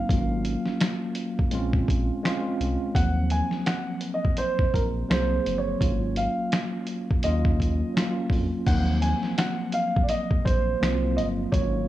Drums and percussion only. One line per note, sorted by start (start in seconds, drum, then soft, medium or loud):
0.09 kick loud
0.09 closed hi-hat medium
0.45 closed hi-hat medium
0.66 snare soft
0.81 finger snap medium
0.81 snare loud
0.81 closed hi-hat medium
1.15 closed hi-hat medium
1.39 kick medium
1.51 closed hi-hat medium
1.73 kick medium
1.88 kick medium
1.88 closed hi-hat medium
2.25 finger snap medium
2.25 snare medium
2.25 closed hi-hat medium
2.61 closed hi-hat medium
2.95 kick medium
2.95 closed hi-hat medium
3.30 closed hi-hat medium
3.51 snare soft
3.66 finger snap medium
3.66 snare loud
3.66 closed hi-hat medium
4.01 closed hi-hat medium
4.25 kick medium
4.37 closed hi-hat medium
4.59 kick medium
4.74 kick medium
4.74 closed hi-hat medium
5.11 finger snap medium
5.11 snare loud
5.11 closed hi-hat medium
5.46 closed hi-hat medium
5.81 kick loud
5.81 closed hi-hat medium
6.16 closed hi-hat medium
6.52 finger snap medium
6.52 snare loud
6.52 closed hi-hat medium
6.87 closed hi-hat medium
7.11 kick medium
7.23 closed hi-hat medium
7.45 kick medium
7.60 kick medium
7.60 closed hi-hat medium
7.97 finger snap medium
7.97 snare loud
7.97 closed hi-hat medium
8.30 kick medium
8.30 open hi-hat soft
8.66 kick loud
8.66 closed hi-hat medium
8.66 crash loud
9.02 closed hi-hat medium
9.23 snare soft
9.38 finger snap medium
9.38 snare loud
9.38 closed hi-hat medium
9.72 closed hi-hat medium
9.96 kick loud
10.09 closed hi-hat medium
10.31 kick medium
10.46 kick loud
10.46 closed hi-hat medium
10.83 finger snap medium
10.83 snare loud
10.83 closed hi-hat medium
11.18 closed hi-hat medium
11.52 kick loud
11.52 closed hi-hat medium